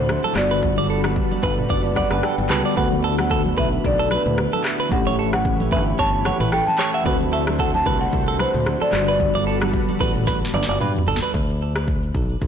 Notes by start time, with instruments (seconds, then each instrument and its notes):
Already playing: fingered electric bass D2, tine electric piano D3 A3 C4 F#4, analog synth pad D3 D4 E4 F#4 C5, marimba C5
0.09 cross-stick, high conga, shaker
0.24 clean electric guitar A4, high conga, shaker
0.33 fingered electric bass G1, tine electric piano D3 G3 B3, analog synth pad G3 A4 B4, marimba D5, cross-stick, clap
0.38 tine electric piano F#4
0.51 clean electric guitar B4, shaker
0.63 kick, low conga, shaker
0.77 clean electric guitar D5, high conga, shaker
0.89 clean electric guitar A4, shaker
1.04 cross-stick, high conga, shaker
1.16 kick, low conga, shaker
1.31 high conga, shaker
1.43 fingered electric bass G1, tine electric piano B4, clean electric guitar B4, kick, open hi-hat, shaker
1.57 mid tom, shaker
1.70 fingered electric bass F#1, tine electric piano D5, clean electric guitar D5, kick, low conga, shaker
1.85 shaker
1.96 clean electric guitar D5, tine electric piano F#5, kick, cross-stick, high conga, shaker
2.11 fingered electric bass F#1, clean electric guitar B4, cross-stick, shaker
2.23 clean electric guitar A4, tine electric piano G5, cross-stick, high conga, shaker
2.38 fingered electric bass G1, high conga, shaker
2.49 fingered electric bass C#2, tine electric piano D3 G3 B3 F#4 A5, clean electric guitar B4, cross-stick, clap, open hi-hat, shaker
2.65 clean electric guitar D5, shaker
2.74 fingered electric bass D2, tine electric piano D3 A3 B3, analog synth pad D3 E4 B4, clean electric guitar B4, marimba F#5, kick, low conga, shaker
2.79 tine electric piano F#4
2.92 high conga, shaker
3.04 clean electric guitar A4
3.18 marimba F#5, cross-stick, high conga, shaker
3.30 clean electric guitar A4, kick, low conga, shaker
3.45 high conga, shaker
3.57 fingered electric bass B1, clean electric guitar B4, marimba E5, kick
3.72 shaker
3.84 fingered electric bass B1, marimba D5, kick, low conga, shaker
3.99 clean electric guitar A4, shaker
4.11 clean electric guitar B4, marimba B4, cross-stick, high conga, shaker
4.26 fingered electric bass D2, mid tom, shaker
4.38 cross-stick, high conga, shaker
4.53 clean electric guitar A4, high conga, shaker
4.65 cross-stick, clap
4.80 clean electric guitar B4, shaker
4.89 fingered electric bass A1, tine electric piano E3 A3 C#4, analog synth pad A3 G4 B4 C#5, marimba F#5, kick, low conga, shaker
4.94 tine electric piano G4
5.06 clean electric guitar C#5, high conga, shaker
5.19 clean electric guitar A4
5.33 marimba F#5, cross-stick, high conga, shaker
5.45 kick, low conga, shaker
5.60 high conga, shaker
5.72 fingered electric bass G1, clean electric guitar B4, marimba E5, kick
5.87 shaker
5.99 fingered electric bass G1, clean electric guitar C#5, marimba A5, kick, low conga, shaker
6.14 shaker
6.25 clean electric guitar C#5, marimba F#5, cross-stick, high conga, shaker
6.40 fingered electric bass A1, clean electric guitar B4, mid tom, shaker
6.52 clean electric guitar A4, marimba G5, cross-stick, high conga, shaker
6.67 marimba A5, high conga, shaker
6.79 clean electric guitar C#5, cross-stick, clap
6.93 clean electric guitar E5, marimba F#5, shaker
7.03 fingered electric bass D2, tine electric piano D3 A3 C4, analog synth pad D3 D4 F#4 C5, clean electric guitar B4, kick, low conga, shaker
7.08 tine electric piano F#4
7.20 high conga, shaker
7.32 clean electric guitar A4, marimba E5
7.47 cross-stick, high conga, shaker
7.59 clean electric guitar A4, marimba F#5, kick, low conga, shaker
7.74 marimba A5, high conga, shaker
7.86 fingered electric bass C2, clean electric guitar B4, kick
8.00 marimba F#5, shaker
8.13 fingered electric bass C2, kick, low conga, shaker
8.28 clean electric guitar A4, shaker
8.39 clean electric guitar B4, marimba C5, cross-stick, high conga, shaker
8.54 fingered electric bass D2, mid tom, shaker
8.66 cross-stick, high conga, shaker
8.81 clean electric guitar A4, marimba D5, high conga, shaker
8.91 fingered electric bass G1, tine electric piano D3 G3 B3, analog synth pad G3 D4 F#4 A4 B4, cross-stick, clap
8.96 tine electric piano F#4
9.08 clean electric guitar B4, marimba D5, shaker
9.20 kick, low conga, shaker
9.35 clean electric guitar D5, high conga, shaker
9.47 clean electric guitar A4, shaker
9.62 cross-stick, high conga, shaker
9.73 kick, low conga, shaker
9.89 high conga, shaker
10.00 fingered electric bass A1, clean electric guitar B4, kick, open hi-hat, shaker
10.15 mid tom, shaker
10.27 clean electric guitar B4, kick, snare, low conga, shaker
10.42 snare, shaker
10.54 fingered electric bass G1, clean electric guitar D5, high conga, shaker
10.63 snare
10.68 fingered electric bass G1, clean electric guitar D5, shaker
10.80 fingered electric bass G2, clean electric guitar B4, mid tom, high conga, low conga, shaker
10.96 floor tom, high conga, shaker
11.07 fingered electric bass G1, clean electric guitar A4, open hi-hat, shaker
11.16 snare
11.22 clean electric guitar B4, shaker
11.34 fingered electric bass D2, kick, shaker
11.49 shaker
11.76 cross-stick, shaker
11.87 kick, shaker
12.03 shaker
12.15 fingered electric bass B1, kick
12.29 shaker
12.41 fingered electric bass B1, kick, shaker